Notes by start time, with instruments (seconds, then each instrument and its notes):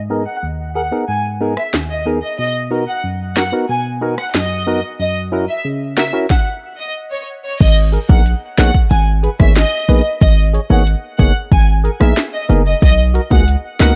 Already playing: synth stab G#2
0.10 synth stab B3 D#4 G#4 A#4
0.27 violin section F#5
0.43 synth stab D#2
0.75 synth stab G#4 A#4, violin section F#5
0.91 synth stab B3 D#4 G#4 A#4
1.08 synth stab G#2, violin section G#5
1.41 synth stab B3 D#4 G#4 A#4
1.57 violin section E5, cross-stick
1.74 synth stab D#2, snare, clap
1.90 violin section D#5
2.06 synth stab B3 D#4 G#4 A#4
2.23 violin section D#5
2.39 synth stab B2, violin section D#5
2.71 synth stab B3 D#4 F#4 A#4
2.88 violin section F#5
3.04 synth stab F#2
3.36 synth stab F#4 A#4, violin section F#5, snare, clap
3.52 synth stab B3 D#4 F#4 A#4
3.69 synth stab B2, violin section G#5
4.01 synth stab B3 D#4 F#4 A#4
4.18 violin section F#5, cross-stick
4.35 synth stab F#2, violin section D#5, snare, clap
4.67 synth stab B3 D#4 F#4 A#4
5.00 synth stab F#2, violin section D#5
5.32 synth stab C#4 E4 F#4 A#4
5.49 violin section E5
5.65 synth stab C#3
5.97 synth stab F#4 A#4, violin section E5, snare, clap
6.13 synth stab C#4 E4 F#4 A#4
6.30 violin section F#5, kick, snare
6.79 violin section D#5
7.11 violin section C#5
7.44 violin section C#5
7.60 808-style bass G#1, violin section D#5, kick, closed hi-hat, crash
7.92 synth stab G#4 A#4, closed hi-hat
8.09 808-style bass A#1, synth stab A#3 B3 D#4 G#4 A#4, violin section F#5, kick
8.26 closed hi-hat
8.58 808-style bass A#1, synth stab A#3 B3 D#4 G#4 C#5, violin section F#5, snare, clap, closed hi-hat
8.74 kick
8.91 808-style bass G#1, violin section G#5, closed hi-hat
9.23 synth stab G#4 B4, closed hi-hat
9.39 808-style bass G#1, synth stab A#3 B3 D#4 G#4 C#5, violin section E5, kick, cross-stick
9.56 violin section D#5, snare, clap, closed hi-hat
9.88 808-style bass A#1, synth stab A#3 B3 D#4 G#4 B4, closed hi-hat
10.21 808-style bass G#1, violin section D#5, kick, closed hi-hat
10.53 synth stab G#4 C#5, closed hi-hat
10.70 808-style bass G#1, synth stab A#3 B3 D#4 G#4 C#5, violin section F#5
10.87 closed hi-hat
11.19 808-style bass F#1, synth stab A#3 B3 D#4 G#4 C#5, violin section F#5, kick, closed hi-hat
11.52 808-style bass G#1, violin section G#5, kick, closed hi-hat
11.84 synth stab G#4 A#4, closed hi-hat
12.00 808-style bass A#1, synth stab A#3 B3 D#4 G#4 A#4, violin section E5, cross-stick
12.17 snare, clap, closed hi-hat
12.33 violin section D#5
12.49 808-style bass F#1, synth stab A#3 B3 D#4 G#4 A#4, closed hi-hat
12.66 violin section D#5
12.82 808-style bass B1, violin section D#5, kick, closed hi-hat
13.14 synth stab F#4 A#4, closed hi-hat
13.30 808-style bass C#2, synth stab A#3 B3 D#4 F#4 G#4, violin section F#5, kick
13.48 closed hi-hat
13.79 808-style bass C#2, synth stab A#3 B3 D#4 F#4 A#4, violin section F#5, snare, clap, closed hi-hat